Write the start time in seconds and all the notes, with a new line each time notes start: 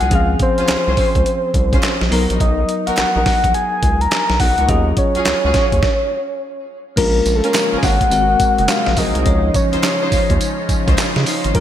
Already playing: F#5
0.01 C2, closed hi-hat
0.10 C#2 F3 C4 C#4 G#4, kick, closed hi-hat
0.15 F5
0.39 C5, kick, closed hi-hat
0.58 C2 C#4 F4 G#4 C5, closed hi-hat
0.68 C2, snare, clap, closed hi-hat
0.87 C2 C#4 F4 G#4 C5
0.97 kick, open hi-hat
1.15 C#2, kick, closed hi-hat
1.26 closed hi-hat
1.54 C2, kick, closed hi-hat
1.72 C#4 F4 G#4 C5, kick, closed hi-hat
1.83 snare, clap, closed hi-hat
1.84 clap
2.01 A#1, snare
2.10 B1 F#3 B3 D#4 F#4 A#4, open hi-hat
2.30 A#1, closed hi-hat
2.40 B1 D#5, kick, closed hi-hat
2.69 closed hi-hat
2.86 A#1 B3 D#4 F#4 A#4 F#5, closed hi-hat
2.97 A#1, snare, clap, closed hi-hat
2.99 clap
3.15 A#1 B3 D#4 F#4 A#4
3.26 F#5, kick, snare, open hi-hat
3.44 A#1, kick, closed hi-hat
3.54 G#5, closed hi-hat
3.83 C#2, kick, closed hi-hat
4.01 A#5, closed hi-hat
4.11 snare, clap, closed hi-hat
4.30 B1, snare
4.40 B1 B3 D#4 F#4 A#4 F#5, kick, open hi-hat
4.58 C#2, closed hi-hat
4.68 D#2 F#3 C#4 F4 G#4 D#5, kick, closed hi-hat
4.97 C#5, kick, closed hi-hat
5.15 C#2 C#4 F4 F#4 G#4, closed hi-hat
5.25 C#2, snare, clap, closed hi-hat
5.44 C#2 C#4 F4 F#4 G#4
5.54 kick, snare, closed hi-hat
5.72 D#2, kick, closed hi-hat
5.83 kick, snare
6.96 A#1 C#3 F3 G#3 A#3 C#4 F4 A#4, kick, closed hi-hat, crash
7.26 A#1, closed hi-hat, tambourine
7.35 A4
7.44 C#4 F4 G#4 A#4, closed hi-hat
7.54 snare, clap, closed hi-hat, tambourine
7.56 clap
7.73 G#1 C#4 F4 G#4 A#4
7.78 G#5
7.83 G#1 F#5, kick, snare, open hi-hat, tambourine
8.01 kick, closed hi-hat
8.10 G#1 C3 F#3 G#3 C4 D#4 F#4 A#4, closed hi-hat, tambourine
8.40 kick, closed hi-hat, tambourine
8.58 F#1, closed hi-hat
8.68 F5, snare, clap, closed hi-hat, tambourine
8.86 A#1, snare
8.97 A#1 C4 F#4 G#4 A#4 D#5, kick, open hi-hat, tambourine
9.15 C2, closed hi-hat
9.25 C#2 C#3 F3 C#4 D#4 C#5, kick, closed hi-hat
9.54 C#5, kick, closed hi-hat, tambourine
9.73 D#2 C#4 D#4 F4 C5, closed hi-hat
9.83 C#5, snare, clap, closed hi-hat, tambourine
10.02 C#4 D#4 F4 C5
10.12 D#2, kick, open hi-hat, tambourine
10.30 D#2, kick, closed hi-hat
10.41 closed hi-hat, tambourine
10.69 C#2, kick, closed hi-hat, tambourine
10.87 C#2 C#4 D#4 F4 C5, kick, closed hi-hat
10.98 snare, clap, closed hi-hat, tambourine
10.99 clap
11.16 C#3, snare
11.26 C#4 D#4 F4 C5, open hi-hat, tambourine
11.44 G#1, closed hi-hat
11.54 A#1 G#3 A#3 C#4 F4 A#4, kick, closed hi-hat